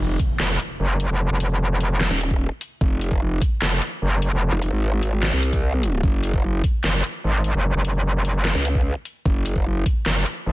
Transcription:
Already playing: wobble bass F1, impact
0.19 kick, closed hi-hat
0.40 wobble bass F1, snare, clap
0.60 closed hi-hat
0.80 wobble bass F#1
1.00 closed hi-hat
1.10 wobble bass F1
1.30 wobble bass F1
1.40 closed hi-hat
1.81 closed hi-hat
2.01 snare, clap
2.11 wobble bass D#1
2.21 closed hi-hat
2.31 kick
2.61 closed hi-hat
2.81 wobble bass F1, kick
3.01 closed hi-hat
3.11 kick
3.42 kick, closed hi-hat
3.62 wobble bass F1, snare, clap
3.82 closed hi-hat
4.02 wobble bass F#1
4.22 closed hi-hat
4.32 wobble bass F1
4.52 wobble bass F1
4.62 closed hi-hat
4.72 wobble bass G#1
5.03 closed hi-hat
5.23 snare, clap
5.33 wobble bass C2
5.43 closed hi-hat
5.53 kick, closed hi-hat
5.83 closed hi-hat
6.03 wobble bass F#1, kick
6.24 closed hi-hat
6.34 kick
6.64 kick, closed hi-hat
6.84 wobble bass F#1, snare, clap
7.04 closed hi-hat
7.24 wobble bass G#1
7.44 closed hi-hat
7.55 wobble bass F#1
7.75 wobble bass F#1
7.85 closed hi-hat
8.25 closed hi-hat
8.45 snare, clap
8.55 wobble bass C#2
8.65 closed hi-hat
8.75 kick
9.05 closed hi-hat
9.26 wobble bass F#1, kick
9.46 closed hi-hat
9.56 kick
9.86 kick, closed hi-hat
10.06 wobble bass F#1, snare, clap
10.26 closed hi-hat
10.46 wobble bass G#1

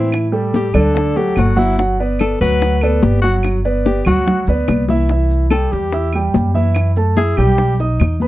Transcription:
Already playing: upright bass A2, grand piano E3 E4 E5, tenor saxophone C4
0.12 high bongo, high conga, claves, maracas
0.32 grand piano G3 G4 A4, high bongo, high conga
0.54 tenor saxophone G4, high bongo, high conga, maracas
0.74 upright bass D2, grand piano D3 D4 D5, tenor saxophone A4, high conga, low conga, claves, maracas
0.94 grand piano D3 D4 D5, high bongo, high conga, maracas
1.16 grand piano F#3 F#4 A4, tenor saxophone G4, high bongo, high conga
1.36 upright bass G1, tenor saxophone F#4, high bongo, low bongo, high conga, claves, maracas
1.56 grand piano F#3 F#4 F#5, tenor saxophone E4, high bongo, high conga, maracas
1.78 grand piano F#3 F#4 F#5, high bongo, high conga, maracas
1.99 grand piano B3 B4 D5, high bongo, high conga
2.19 tenor saxophone A4, high bongo, high conga, claves, maracas
2.41 upright bass D2, grand piano F#3 F#4 F#5, tenor saxophone B4, maracas
2.62 high bongo, high conga, maracas
2.81 grand piano B3 B4 D5, tenor saxophone A4, high bongo, high conga, claves, maracas
3.02 upright bass G1, tenor saxophone G4, high bongo, low bongo, high conga, maracas
3.22 grand piano F#3 F#4 F#5, tenor saxophone F#4, high bongo, maracas
3.43 high bongo, high conga, claves, maracas
3.65 grand piano B3 B4 D5, high bongo, high conga, maracas
3.85 tenor saxophone G4, high bongo, high conga, maracas
4.05 upright bass D2, grand piano F#3 F#4 F#5, tenor saxophone F#4, high conga, low conga, claves, maracas
4.26 grand piano F#3 F#4 F#5, high bongo, high conga, low conga, maracas
4.47 upright bass D2, grand piano B3 B4 D5, high bongo, high conga, maracas
4.68 upright bass C2, high bongo, high conga, claves, maracas
4.88 grand piano E3 E4 E5, low bongo, high conga, maracas
5.09 grand piano E3 E4 E5, high bongo, high conga, maracas
5.30 high conga, maracas
5.50 grand piano G3 G4 G5, tenor saxophone A4, high bongo, high conga, claves, maracas
5.72 upright bass E2, tenor saxophone G4, high bongo, high conga, maracas
5.92 grand piano E4 E5 E6, high bongo, high conga, maracas
6.13 grand piano G3 G4 G5, high bongo, high conga, claves
6.34 upright bass F#2, high bongo, low bongo, high conga, maracas
6.54 grand piano E3 E4 E5, high bongo, high conga, maracas
6.75 high bongo, high conga, claves, maracas
6.96 grand piano A3 A4 A5, high conga, maracas
7.16 grand piano E4 E5 E6, tenor saxophone G#4, high bongo, high conga, maracas
7.37 upright bass B1, grand piano G3 G4 G5, tenor saxophone G4, high bongo, low conga, claves, maracas
7.58 high bongo, high conga, maracas
7.79 grand piano D#4 D#5 D#6, high bongo, high conga, maracas
8.00 upright bass E2, high bongo, low bongo, high conga, claves, maracas
8.20 grand piano B3 B4 B5, high bongo, high conga, maracas

